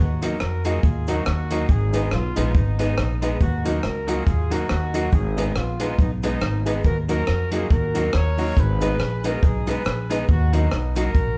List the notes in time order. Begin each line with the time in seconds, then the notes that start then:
Already playing: F#4
0.00 D#2 D#4
0.22 F#3 A#3 B3 D#4 F#4 A#4 D#5, closed hi-hat, cabasa
0.40 F2 F#4 A#4, cross-stick, cabasa
0.65 F#3 A#3 D#4 F4 F#4 G#4 A#4 D#5, closed hi-hat, cabasa
0.83 D#2, muted clean electric guitar stroke, kick, cabasa
1.07 F#3 A#3 D#4 F#4 A#4 D#5, closed hi-hat, cabasa
1.25 D#2, muted clean electric guitar stroke, cross-stick, cabasa
1.51 F#3 A#3 D#4 F#4 A#4 D#5, closed hi-hat, cabasa
1.69 G#1 D#4 G#4, kick, cabasa
1.93 G#3 B3 D#4 G#4 B4 D#5, closed hi-hat, cabasa
2.11 B1 B3 F4, cross-stick, cabasa
2.36 A#1 G#3 B3 D#4 G#4 B4 D#5, closed hi-hat, cabasa
2.55 G#1 B3 D#4, kick, cabasa
2.79 G#3 B3 D#4 G#4 B4 D#5, closed hi-hat, cabasa
2.98 A#1, cross-stick, cabasa
3.22 G#3 B3 D#4 G#4 B4 D#5, closed hi-hat, cabasa
3.41 D#2 D#4 F#4, kick, cabasa
3.65 F#3 A#3 B3 D#4 F#4 A#4 D#5, closed hi-hat, cabasa
3.83 C#2 F#4 A#4, cross-stick, cabasa
4.07 F#3 A#3 D#4 F4 F#4 G#4 A#4 D#5, closed hi-hat, cabasa
4.27 D#2, kick, cabasa
4.50 F#3 A#3 D#4 F#4 A#4 D#5, closed hi-hat, cabasa
4.69 D#2, muted clean electric guitar stroke, cross-stick, cabasa
4.94 F#3 A#3 D#4 F#4 A#4 D#5, closed hi-hat, cabasa
5.12 G#1 D#4 G#4, kick, cabasa
5.37 G#3 B3 D#4 G#4 B4 D#5, closed hi-hat, cabasa
5.56 A#1 B3 F4, cross-stick, cabasa
5.80 G#3 B3 D#4 G#4 B4 D#5, closed hi-hat, cabasa
5.99 B1 B3 D#4, kick, cabasa
6.23 G#3 B3 D#4 G#4 B4 D#5, closed hi-hat, cabasa
6.41 G#1, cross-stick, cabasa
6.65 G#3 B3 D#4 G#4 B4 D#5, closed hi-hat, cabasa
6.84 D#2 F#4 A#4, kick, cabasa
7.08 F#3 A#3 D#4 F#4 A#4 D#5, closed hi-hat, cabasa
7.27 F2, cross-stick, cabasa
7.51 F#3 A#3 D#4 F4 F#4 G#4 A#4 D#5, closed hi-hat, cabasa
7.70 D#2 F#4 A#4, muted clean electric guitar stroke, kick, cabasa
7.94 F#3 A#3 D#4 F#4 A#4 D#5, closed hi-hat, cabasa
8.13 D#2 A#4 C#5, muted clean electric guitar stroke, cross-stick, cabasa
8.37 F#3 A#3 D#4 F#4 A#4 D#5, open hi-hat, cabasa
8.57 G#1 G#4 B4, kick, hi-hat pedal, cabasa
8.81 G#3 B3 D#4 G#4 B4 D#5, closed hi-hat, cabasa
8.99 A#1, cross-stick, cabasa
9.24 G#3 B3 D#4 F#4 G#4 A#4 B4 D#5, closed hi-hat, cabasa
9.43 B1 D#4 G#4, kick, cabasa
9.67 G#3 B3 D#4 G#4 B4 D#5, closed hi-hat, cabasa
9.85 A#1, cross-stick, cabasa
10.10 G#3 B3 D#4 G#4 B4 D#5, closed hi-hat, cabasa
10.28 D#2 D#4 F#4, kick, cabasa
10.53 F#3 A#3 B3 D#4 F#4 A#4 D#5, closed hi-hat, cabasa
10.71 B1, cross-stick, cabasa
10.95 F#3 A#3 D#4 F#4 A#4 D#5, closed hi-hat, cabasa
11.14 A#1, muted clean electric guitar stroke, kick, cabasa